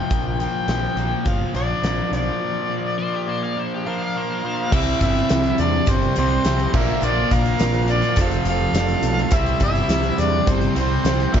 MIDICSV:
0, 0, Header, 1, 9, 480
1, 0, Start_track
1, 0, Tempo, 575816
1, 93, Time_signature, 4, 2, 24, 8
1, 9503, End_track
2, 0, Start_track
2, 0, Title_t, "Harmonica"
2, 0, Program_c, 0, 22
2, 0, Note_on_c, 0, 79, 90
2, 303, Note_off_c, 0, 79, 0
2, 331, Note_on_c, 0, 79, 99
2, 1058, Note_on_c, 0, 77, 84
2, 1071, Note_off_c, 0, 79, 0
2, 1289, Note_off_c, 0, 77, 0
2, 1294, Note_on_c, 0, 74, 84
2, 1740, Note_off_c, 0, 74, 0
2, 1775, Note_on_c, 0, 74, 72
2, 3074, Note_off_c, 0, 74, 0
2, 3215, Note_on_c, 0, 77, 95
2, 3950, Note_on_c, 0, 76, 105
2, 3963, Note_off_c, 0, 77, 0
2, 4183, Note_off_c, 0, 76, 0
2, 4187, Note_on_c, 0, 76, 97
2, 4668, Note_on_c, 0, 74, 94
2, 4680, Note_off_c, 0, 76, 0
2, 4915, Note_on_c, 0, 72, 87
2, 4927, Note_off_c, 0, 74, 0
2, 5146, Note_off_c, 0, 72, 0
2, 5151, Note_on_c, 0, 72, 102
2, 5631, Note_on_c, 0, 76, 94
2, 5643, Note_off_c, 0, 72, 0
2, 5872, Note_on_c, 0, 74, 107
2, 5885, Note_off_c, 0, 76, 0
2, 6105, Note_on_c, 0, 77, 107
2, 6118, Note_off_c, 0, 74, 0
2, 6590, Note_on_c, 0, 74, 92
2, 6603, Note_off_c, 0, 77, 0
2, 6823, Note_off_c, 0, 74, 0
2, 6835, Note_on_c, 0, 77, 96
2, 7049, Note_off_c, 0, 77, 0
2, 7074, Note_on_c, 0, 77, 110
2, 7787, Note_on_c, 0, 76, 108
2, 7799, Note_off_c, 0, 77, 0
2, 8021, Note_off_c, 0, 76, 0
2, 8026, Note_on_c, 0, 76, 111
2, 8506, Note_on_c, 0, 74, 97
2, 8518, Note_off_c, 0, 76, 0
2, 8746, Note_on_c, 0, 72, 84
2, 8759, Note_off_c, 0, 74, 0
2, 8981, Note_off_c, 0, 72, 0
2, 8986, Note_on_c, 0, 72, 102
2, 9460, Note_on_c, 0, 76, 98
2, 9472, Note_off_c, 0, 72, 0
2, 9503, Note_off_c, 0, 76, 0
2, 9503, End_track
3, 0, Start_track
3, 0, Title_t, "Electric slide guitar"
3, 0, Program_c, 1, 29
3, 2493, Note_on_c, 1, 72, 87
3, 2610, Note_off_c, 1, 72, 0
3, 2629, Note_on_c, 1, 67, 63
3, 2738, Note_off_c, 1, 67, 0
3, 2741, Note_on_c, 1, 72, 71
3, 2854, Note_off_c, 1, 72, 0
3, 2870, Note_on_c, 1, 77, 82
3, 2979, Note_off_c, 1, 77, 0
3, 2988, Note_on_c, 1, 72, 79
3, 3098, Note_off_c, 1, 72, 0
3, 3121, Note_on_c, 1, 67, 79
3, 3225, Note_off_c, 1, 67, 0
3, 3232, Note_on_c, 1, 72, 70
3, 3340, Note_off_c, 1, 72, 0
3, 3359, Note_on_c, 1, 77, 69
3, 3464, Note_off_c, 1, 77, 0
3, 3476, Note_on_c, 1, 72, 79
3, 3699, Note_off_c, 1, 72, 0
3, 3718, Note_on_c, 1, 72, 80
3, 3940, Note_off_c, 1, 72, 0
3, 9503, End_track
4, 0, Start_track
4, 0, Title_t, "Reed electric piano"
4, 0, Program_c, 2, 4
4, 3931, Note_on_c, 2, 67, 78
4, 3932, Note_on_c, 2, 72, 68
4, 3939, Note_on_c, 2, 76, 80
4, 4317, Note_off_c, 2, 67, 0
4, 4318, Note_off_c, 2, 72, 0
4, 4321, Note_off_c, 2, 76, 0
4, 4417, Note_on_c, 2, 67, 68
4, 4420, Note_on_c, 2, 72, 68
4, 4422, Note_on_c, 2, 76, 71
4, 4801, Note_off_c, 2, 67, 0
4, 4802, Note_off_c, 2, 72, 0
4, 4803, Note_off_c, 2, 76, 0
4, 4897, Note_on_c, 2, 67, 64
4, 4901, Note_on_c, 2, 72, 53
4, 4906, Note_on_c, 2, 74, 73
4, 5281, Note_off_c, 2, 67, 0
4, 5283, Note_off_c, 2, 72, 0
4, 5285, Note_off_c, 2, 74, 0
4, 5367, Note_on_c, 2, 67, 66
4, 5379, Note_on_c, 2, 72, 61
4, 5384, Note_on_c, 2, 76, 79
4, 5612, Note_off_c, 2, 67, 0
4, 5614, Note_on_c, 2, 65, 79
4, 5616, Note_on_c, 2, 70, 69
4, 5617, Note_off_c, 2, 72, 0
4, 5620, Note_off_c, 2, 76, 0
4, 5625, Note_on_c, 2, 74, 92
4, 6191, Note_off_c, 2, 65, 0
4, 6192, Note_off_c, 2, 70, 0
4, 6196, Note_off_c, 2, 74, 0
4, 6332, Note_on_c, 2, 65, 74
4, 6341, Note_on_c, 2, 70, 67
4, 6346, Note_on_c, 2, 74, 72
4, 6718, Note_off_c, 2, 65, 0
4, 6723, Note_off_c, 2, 70, 0
4, 6725, Note_off_c, 2, 74, 0
4, 6810, Note_on_c, 2, 65, 65
4, 6817, Note_on_c, 2, 69, 58
4, 6822, Note_on_c, 2, 72, 71
4, 7197, Note_off_c, 2, 65, 0
4, 7200, Note_off_c, 2, 69, 0
4, 7203, Note_off_c, 2, 72, 0
4, 7279, Note_on_c, 2, 65, 70
4, 7286, Note_on_c, 2, 69, 68
4, 7293, Note_on_c, 2, 74, 79
4, 7672, Note_off_c, 2, 65, 0
4, 7675, Note_off_c, 2, 69, 0
4, 7679, Note_off_c, 2, 74, 0
4, 7765, Note_on_c, 2, 64, 77
4, 7775, Note_on_c, 2, 67, 69
4, 7780, Note_on_c, 2, 72, 76
4, 8154, Note_off_c, 2, 64, 0
4, 8160, Note_off_c, 2, 67, 0
4, 8162, Note_off_c, 2, 72, 0
4, 8235, Note_on_c, 2, 64, 71
4, 8240, Note_on_c, 2, 67, 66
4, 8252, Note_on_c, 2, 72, 81
4, 8630, Note_off_c, 2, 64, 0
4, 8632, Note_off_c, 2, 67, 0
4, 8638, Note_off_c, 2, 72, 0
4, 8727, Note_on_c, 2, 64, 72
4, 8730, Note_on_c, 2, 67, 59
4, 8739, Note_on_c, 2, 72, 69
4, 9116, Note_off_c, 2, 64, 0
4, 9117, Note_off_c, 2, 67, 0
4, 9122, Note_off_c, 2, 72, 0
4, 9221, Note_on_c, 2, 64, 79
4, 9226, Note_on_c, 2, 72, 77
4, 9227, Note_on_c, 2, 67, 63
4, 9459, Note_off_c, 2, 64, 0
4, 9461, Note_off_c, 2, 72, 0
4, 9462, Note_off_c, 2, 67, 0
4, 9465, Note_on_c, 2, 65, 78
4, 9467, Note_on_c, 2, 70, 70
4, 9470, Note_on_c, 2, 74, 94
4, 9503, Note_off_c, 2, 65, 0
4, 9503, Note_off_c, 2, 70, 0
4, 9503, Note_off_c, 2, 74, 0
4, 9503, End_track
5, 0, Start_track
5, 0, Title_t, "Lead electric guitar"
5, 0, Program_c, 3, 29
5, 3227, Note_on_c, 3, 70, 86
5, 3908, Note_off_c, 3, 70, 0
5, 3956, Note_on_c, 3, 64, 93
5, 4186, Note_off_c, 3, 64, 0
5, 4205, Note_on_c, 3, 64, 95
5, 4638, Note_off_c, 3, 64, 0
5, 4678, Note_on_c, 3, 62, 75
5, 4924, Note_off_c, 3, 62, 0
5, 4924, Note_on_c, 3, 60, 75
5, 5150, Note_off_c, 3, 60, 0
5, 5166, Note_on_c, 3, 60, 90
5, 5598, Note_off_c, 3, 60, 0
5, 5633, Note_on_c, 3, 70, 83
5, 5864, Note_off_c, 3, 70, 0
5, 5864, Note_on_c, 3, 65, 79
5, 6109, Note_off_c, 3, 65, 0
5, 6109, Note_on_c, 3, 70, 90
5, 6601, Note_off_c, 3, 70, 0
5, 6601, Note_on_c, 3, 65, 78
5, 6828, Note_off_c, 3, 65, 0
5, 6844, Note_on_c, 3, 69, 89
5, 7054, Note_off_c, 3, 69, 0
5, 7087, Note_on_c, 3, 69, 97
5, 7758, Note_off_c, 3, 69, 0
5, 7798, Note_on_c, 3, 64, 89
5, 8027, Note_off_c, 3, 64, 0
5, 8048, Note_on_c, 3, 64, 88
5, 8480, Note_off_c, 3, 64, 0
5, 8533, Note_on_c, 3, 62, 76
5, 8760, Note_off_c, 3, 62, 0
5, 8760, Note_on_c, 3, 60, 77
5, 8988, Note_off_c, 3, 60, 0
5, 9006, Note_on_c, 3, 60, 79
5, 9439, Note_off_c, 3, 60, 0
5, 9503, End_track
6, 0, Start_track
6, 0, Title_t, "Overdriven electric guitar"
6, 0, Program_c, 4, 29
6, 4895, Note_on_c, 4, 48, 75
6, 4905, Note_on_c, 4, 55, 84
6, 4914, Note_on_c, 4, 60, 80
6, 5601, Note_off_c, 4, 48, 0
6, 5606, Note_off_c, 4, 55, 0
6, 5611, Note_off_c, 4, 60, 0
6, 6567, Note_on_c, 4, 58, 85
6, 6576, Note_on_c, 4, 53, 75
6, 6586, Note_on_c, 4, 46, 73
6, 6797, Note_off_c, 4, 58, 0
6, 6802, Note_off_c, 4, 53, 0
6, 6807, Note_off_c, 4, 46, 0
6, 8721, Note_on_c, 4, 48, 86
6, 8733, Note_on_c, 4, 55, 80
6, 8744, Note_on_c, 4, 60, 91
6, 9434, Note_off_c, 4, 48, 0
6, 9441, Note_off_c, 4, 55, 0
6, 9446, Note_off_c, 4, 60, 0
6, 9503, End_track
7, 0, Start_track
7, 0, Title_t, "Distorted electric guitar"
7, 0, Program_c, 5, 30
7, 0, Note_on_c, 5, 53, 56
7, 0, Note_on_c, 5, 57, 61
7, 0, Note_on_c, 5, 60, 61
7, 90, Note_off_c, 5, 60, 0
7, 91, Note_on_c, 5, 46, 72
7, 95, Note_off_c, 5, 57, 0
7, 330, Note_off_c, 5, 53, 0
7, 333, Note_on_c, 5, 53, 56
7, 559, Note_off_c, 5, 53, 0
7, 569, Note_on_c, 5, 53, 63
7, 804, Note_on_c, 5, 58, 70
7, 1035, Note_off_c, 5, 53, 0
7, 1045, Note_on_c, 5, 53, 65
7, 1287, Note_on_c, 5, 62, 68
7, 1292, Note_off_c, 5, 46, 0
7, 1511, Note_off_c, 5, 58, 0
7, 1521, Note_on_c, 5, 58, 60
7, 1755, Note_off_c, 5, 53, 0
7, 1765, Note_on_c, 5, 53, 60
7, 2005, Note_on_c, 5, 46, 65
7, 2240, Note_off_c, 5, 53, 0
7, 2250, Note_on_c, 5, 53, 57
7, 2479, Note_off_c, 5, 53, 0
7, 2489, Note_on_c, 5, 53, 61
7, 2491, Note_off_c, 5, 62, 0
7, 2717, Note_off_c, 5, 58, 0
7, 2727, Note_on_c, 5, 58, 61
7, 2965, Note_off_c, 5, 53, 0
7, 2975, Note_on_c, 5, 53, 56
7, 3211, Note_off_c, 5, 46, 0
7, 3212, Note_on_c, 5, 62, 59
7, 3456, Note_off_c, 5, 58, 0
7, 3466, Note_on_c, 5, 58, 57
7, 3686, Note_off_c, 5, 53, 0
7, 3696, Note_on_c, 5, 53, 56
7, 3933, Note_on_c, 5, 48, 100
7, 3934, Note_off_c, 5, 62, 0
7, 3936, Note_off_c, 5, 53, 0
7, 3941, Note_off_c, 5, 58, 0
7, 3947, Note_on_c, 5, 55, 95
7, 3961, Note_on_c, 5, 60, 101
7, 5120, Note_off_c, 5, 48, 0
7, 5120, Note_off_c, 5, 60, 0
7, 5127, Note_off_c, 5, 55, 0
7, 5130, Note_on_c, 5, 60, 86
7, 5147, Note_on_c, 5, 55, 82
7, 5163, Note_on_c, 5, 48, 66
7, 5359, Note_off_c, 5, 60, 0
7, 5360, Note_off_c, 5, 48, 0
7, 5367, Note_off_c, 5, 55, 0
7, 5370, Note_on_c, 5, 48, 76
7, 5383, Note_on_c, 5, 55, 73
7, 5395, Note_on_c, 5, 60, 76
7, 5599, Note_off_c, 5, 48, 0
7, 5605, Note_off_c, 5, 55, 0
7, 5605, Note_on_c, 5, 46, 92
7, 5611, Note_off_c, 5, 60, 0
7, 5621, Note_on_c, 5, 53, 80
7, 5632, Note_on_c, 5, 58, 103
7, 6796, Note_off_c, 5, 46, 0
7, 6804, Note_off_c, 5, 53, 0
7, 6804, Note_on_c, 5, 41, 81
7, 6809, Note_off_c, 5, 58, 0
7, 6815, Note_on_c, 5, 48, 89
7, 6829, Note_on_c, 5, 53, 108
7, 7748, Note_off_c, 5, 48, 0
7, 7756, Note_off_c, 5, 41, 0
7, 7758, Note_on_c, 5, 48, 83
7, 7768, Note_off_c, 5, 53, 0
7, 7772, Note_on_c, 5, 55, 99
7, 7788, Note_on_c, 5, 60, 101
7, 8950, Note_off_c, 5, 60, 0
7, 8953, Note_off_c, 5, 48, 0
7, 8960, Note_off_c, 5, 55, 0
7, 8960, Note_on_c, 5, 60, 93
7, 8976, Note_on_c, 5, 55, 74
7, 8990, Note_on_c, 5, 48, 70
7, 9193, Note_off_c, 5, 48, 0
7, 9194, Note_off_c, 5, 60, 0
7, 9202, Note_off_c, 5, 55, 0
7, 9203, Note_on_c, 5, 48, 81
7, 9217, Note_on_c, 5, 55, 77
7, 9229, Note_on_c, 5, 60, 85
7, 9435, Note_off_c, 5, 48, 0
7, 9442, Note_off_c, 5, 55, 0
7, 9444, Note_on_c, 5, 46, 84
7, 9448, Note_off_c, 5, 60, 0
7, 9460, Note_on_c, 5, 53, 106
7, 9473, Note_on_c, 5, 58, 88
7, 9503, Note_off_c, 5, 46, 0
7, 9503, Note_off_c, 5, 53, 0
7, 9503, Note_off_c, 5, 58, 0
7, 9503, End_track
8, 0, Start_track
8, 0, Title_t, "Picked electric bass"
8, 0, Program_c, 6, 34
8, 89, Note_on_c, 6, 34, 87
8, 379, Note_off_c, 6, 34, 0
8, 569, Note_on_c, 6, 34, 92
8, 714, Note_off_c, 6, 34, 0
8, 798, Note_on_c, 6, 34, 74
8, 947, Note_off_c, 6, 34, 0
8, 1052, Note_on_c, 6, 31, 89
8, 1197, Note_off_c, 6, 31, 0
8, 1287, Note_on_c, 6, 34, 75
8, 1433, Note_off_c, 6, 34, 0
8, 1522, Note_on_c, 6, 34, 76
8, 1670, Note_off_c, 6, 34, 0
8, 1764, Note_on_c, 6, 35, 76
8, 1912, Note_off_c, 6, 35, 0
8, 3936, Note_on_c, 6, 36, 91
8, 4108, Note_off_c, 6, 36, 0
8, 4177, Note_on_c, 6, 31, 91
8, 4349, Note_off_c, 6, 31, 0
8, 4425, Note_on_c, 6, 36, 97
8, 4594, Note_off_c, 6, 36, 0
8, 4659, Note_on_c, 6, 40, 85
8, 4830, Note_off_c, 6, 40, 0
8, 4896, Note_on_c, 6, 31, 90
8, 5068, Note_off_c, 6, 31, 0
8, 5147, Note_on_c, 6, 36, 84
8, 5315, Note_off_c, 6, 36, 0
8, 5378, Note_on_c, 6, 36, 88
8, 5549, Note_off_c, 6, 36, 0
8, 5617, Note_on_c, 6, 34, 80
8, 5788, Note_off_c, 6, 34, 0
8, 5851, Note_on_c, 6, 34, 93
8, 6025, Note_off_c, 6, 34, 0
8, 6097, Note_on_c, 6, 34, 90
8, 6269, Note_off_c, 6, 34, 0
8, 6332, Note_on_c, 6, 34, 100
8, 6677, Note_off_c, 6, 34, 0
8, 6808, Note_on_c, 6, 29, 97
8, 6982, Note_off_c, 6, 29, 0
8, 7035, Note_on_c, 6, 29, 92
8, 7215, Note_off_c, 6, 29, 0
8, 7275, Note_on_c, 6, 29, 85
8, 7455, Note_off_c, 6, 29, 0
8, 7523, Note_on_c, 6, 35, 83
8, 7699, Note_off_c, 6, 35, 0
8, 7766, Note_on_c, 6, 36, 89
8, 7942, Note_off_c, 6, 36, 0
8, 8007, Note_on_c, 6, 31, 89
8, 8182, Note_off_c, 6, 31, 0
8, 8238, Note_on_c, 6, 36, 89
8, 8416, Note_off_c, 6, 36, 0
8, 8489, Note_on_c, 6, 40, 89
8, 8664, Note_off_c, 6, 40, 0
8, 8728, Note_on_c, 6, 31, 100
8, 8903, Note_off_c, 6, 31, 0
8, 8966, Note_on_c, 6, 36, 88
8, 9142, Note_off_c, 6, 36, 0
8, 9201, Note_on_c, 6, 36, 88
8, 9379, Note_off_c, 6, 36, 0
8, 9451, Note_on_c, 6, 34, 82
8, 9503, Note_off_c, 6, 34, 0
8, 9503, End_track
9, 0, Start_track
9, 0, Title_t, "Drums"
9, 88, Note_on_c, 9, 42, 78
9, 91, Note_on_c, 9, 36, 100
9, 171, Note_off_c, 9, 42, 0
9, 174, Note_off_c, 9, 36, 0
9, 333, Note_on_c, 9, 42, 57
9, 416, Note_off_c, 9, 42, 0
9, 567, Note_on_c, 9, 42, 74
9, 576, Note_on_c, 9, 38, 102
9, 650, Note_off_c, 9, 42, 0
9, 659, Note_off_c, 9, 38, 0
9, 696, Note_on_c, 9, 38, 27
9, 779, Note_off_c, 9, 38, 0
9, 808, Note_on_c, 9, 42, 54
9, 891, Note_off_c, 9, 42, 0
9, 1045, Note_on_c, 9, 42, 73
9, 1049, Note_on_c, 9, 36, 94
9, 1129, Note_off_c, 9, 42, 0
9, 1132, Note_off_c, 9, 36, 0
9, 1289, Note_on_c, 9, 42, 51
9, 1372, Note_off_c, 9, 42, 0
9, 1529, Note_on_c, 9, 42, 76
9, 1539, Note_on_c, 9, 38, 105
9, 1613, Note_off_c, 9, 42, 0
9, 1622, Note_off_c, 9, 38, 0
9, 1775, Note_on_c, 9, 42, 49
9, 1859, Note_off_c, 9, 42, 0
9, 3937, Note_on_c, 9, 36, 113
9, 3937, Note_on_c, 9, 82, 92
9, 3939, Note_on_c, 9, 49, 114
9, 4020, Note_off_c, 9, 82, 0
9, 4021, Note_off_c, 9, 36, 0
9, 4022, Note_off_c, 9, 49, 0
9, 4056, Note_on_c, 9, 42, 45
9, 4139, Note_off_c, 9, 42, 0
9, 4175, Note_on_c, 9, 42, 76
9, 4175, Note_on_c, 9, 82, 68
9, 4177, Note_on_c, 9, 36, 84
9, 4259, Note_off_c, 9, 42, 0
9, 4259, Note_off_c, 9, 82, 0
9, 4260, Note_off_c, 9, 36, 0
9, 4296, Note_on_c, 9, 42, 44
9, 4379, Note_off_c, 9, 42, 0
9, 4413, Note_on_c, 9, 42, 92
9, 4417, Note_on_c, 9, 82, 102
9, 4422, Note_on_c, 9, 38, 111
9, 4496, Note_off_c, 9, 42, 0
9, 4500, Note_off_c, 9, 82, 0
9, 4505, Note_off_c, 9, 38, 0
9, 4533, Note_on_c, 9, 42, 48
9, 4616, Note_off_c, 9, 42, 0
9, 4653, Note_on_c, 9, 42, 73
9, 4656, Note_on_c, 9, 82, 68
9, 4736, Note_off_c, 9, 42, 0
9, 4740, Note_off_c, 9, 82, 0
9, 4888, Note_on_c, 9, 82, 92
9, 4893, Note_on_c, 9, 42, 90
9, 4896, Note_on_c, 9, 36, 102
9, 4971, Note_off_c, 9, 82, 0
9, 4976, Note_off_c, 9, 42, 0
9, 4979, Note_off_c, 9, 36, 0
9, 5016, Note_on_c, 9, 42, 45
9, 5100, Note_off_c, 9, 42, 0
9, 5130, Note_on_c, 9, 82, 72
9, 5136, Note_on_c, 9, 42, 67
9, 5214, Note_off_c, 9, 82, 0
9, 5219, Note_off_c, 9, 42, 0
9, 5374, Note_on_c, 9, 42, 100
9, 5376, Note_on_c, 9, 82, 89
9, 5383, Note_on_c, 9, 38, 117
9, 5457, Note_off_c, 9, 42, 0
9, 5459, Note_off_c, 9, 82, 0
9, 5466, Note_off_c, 9, 38, 0
9, 5499, Note_on_c, 9, 42, 46
9, 5583, Note_off_c, 9, 42, 0
9, 5614, Note_on_c, 9, 82, 64
9, 5617, Note_on_c, 9, 36, 105
9, 5618, Note_on_c, 9, 57, 88
9, 5697, Note_off_c, 9, 82, 0
9, 5701, Note_off_c, 9, 36, 0
9, 5701, Note_off_c, 9, 57, 0
9, 5854, Note_on_c, 9, 82, 88
9, 5937, Note_off_c, 9, 82, 0
9, 6096, Note_on_c, 9, 82, 61
9, 6097, Note_on_c, 9, 36, 83
9, 6098, Note_on_c, 9, 42, 73
9, 6179, Note_off_c, 9, 82, 0
9, 6180, Note_off_c, 9, 36, 0
9, 6181, Note_off_c, 9, 42, 0
9, 6217, Note_on_c, 9, 42, 46
9, 6300, Note_off_c, 9, 42, 0
9, 6331, Note_on_c, 9, 42, 93
9, 6333, Note_on_c, 9, 82, 89
9, 6340, Note_on_c, 9, 38, 112
9, 6415, Note_off_c, 9, 42, 0
9, 6416, Note_off_c, 9, 82, 0
9, 6424, Note_off_c, 9, 38, 0
9, 6449, Note_on_c, 9, 42, 48
9, 6532, Note_off_c, 9, 42, 0
9, 6566, Note_on_c, 9, 42, 68
9, 6650, Note_off_c, 9, 42, 0
9, 6686, Note_on_c, 9, 42, 46
9, 6769, Note_off_c, 9, 42, 0
9, 6803, Note_on_c, 9, 42, 99
9, 6811, Note_on_c, 9, 36, 99
9, 6816, Note_on_c, 9, 82, 99
9, 6886, Note_off_c, 9, 42, 0
9, 6894, Note_off_c, 9, 36, 0
9, 6899, Note_off_c, 9, 82, 0
9, 6929, Note_on_c, 9, 42, 53
9, 7012, Note_off_c, 9, 42, 0
9, 7048, Note_on_c, 9, 42, 74
9, 7048, Note_on_c, 9, 82, 73
9, 7131, Note_off_c, 9, 42, 0
9, 7131, Note_off_c, 9, 82, 0
9, 7290, Note_on_c, 9, 82, 92
9, 7291, Note_on_c, 9, 42, 116
9, 7300, Note_on_c, 9, 38, 123
9, 7374, Note_off_c, 9, 42, 0
9, 7374, Note_off_c, 9, 82, 0
9, 7383, Note_off_c, 9, 38, 0
9, 7408, Note_on_c, 9, 42, 49
9, 7491, Note_off_c, 9, 42, 0
9, 7524, Note_on_c, 9, 42, 83
9, 7528, Note_on_c, 9, 82, 79
9, 7607, Note_off_c, 9, 42, 0
9, 7611, Note_off_c, 9, 82, 0
9, 7649, Note_on_c, 9, 38, 33
9, 7732, Note_off_c, 9, 38, 0
9, 7758, Note_on_c, 9, 42, 111
9, 7765, Note_on_c, 9, 82, 108
9, 7768, Note_on_c, 9, 36, 117
9, 7841, Note_off_c, 9, 42, 0
9, 7849, Note_off_c, 9, 82, 0
9, 7851, Note_off_c, 9, 36, 0
9, 7888, Note_on_c, 9, 42, 45
9, 7971, Note_off_c, 9, 42, 0
9, 8001, Note_on_c, 9, 82, 73
9, 8003, Note_on_c, 9, 42, 77
9, 8009, Note_on_c, 9, 36, 89
9, 8084, Note_off_c, 9, 82, 0
9, 8087, Note_off_c, 9, 42, 0
9, 8093, Note_off_c, 9, 36, 0
9, 8129, Note_on_c, 9, 42, 41
9, 8212, Note_off_c, 9, 42, 0
9, 8247, Note_on_c, 9, 42, 104
9, 8247, Note_on_c, 9, 82, 101
9, 8256, Note_on_c, 9, 38, 106
9, 8330, Note_off_c, 9, 42, 0
9, 8330, Note_off_c, 9, 82, 0
9, 8339, Note_off_c, 9, 38, 0
9, 8366, Note_on_c, 9, 42, 45
9, 8449, Note_off_c, 9, 42, 0
9, 8488, Note_on_c, 9, 42, 69
9, 8493, Note_on_c, 9, 82, 75
9, 8572, Note_off_c, 9, 42, 0
9, 8576, Note_off_c, 9, 82, 0
9, 8729, Note_on_c, 9, 42, 85
9, 8730, Note_on_c, 9, 82, 94
9, 8731, Note_on_c, 9, 36, 110
9, 8812, Note_off_c, 9, 42, 0
9, 8813, Note_off_c, 9, 82, 0
9, 8814, Note_off_c, 9, 36, 0
9, 8848, Note_on_c, 9, 42, 46
9, 8931, Note_off_c, 9, 42, 0
9, 8971, Note_on_c, 9, 42, 71
9, 9054, Note_off_c, 9, 42, 0
9, 9211, Note_on_c, 9, 42, 95
9, 9212, Note_on_c, 9, 82, 90
9, 9220, Note_on_c, 9, 38, 118
9, 9294, Note_off_c, 9, 42, 0
9, 9295, Note_off_c, 9, 82, 0
9, 9303, Note_off_c, 9, 38, 0
9, 9336, Note_on_c, 9, 42, 44
9, 9419, Note_off_c, 9, 42, 0
9, 9451, Note_on_c, 9, 57, 94
9, 9456, Note_on_c, 9, 36, 105
9, 9457, Note_on_c, 9, 82, 64
9, 9503, Note_off_c, 9, 36, 0
9, 9503, Note_off_c, 9, 57, 0
9, 9503, Note_off_c, 9, 82, 0
9, 9503, End_track
0, 0, End_of_file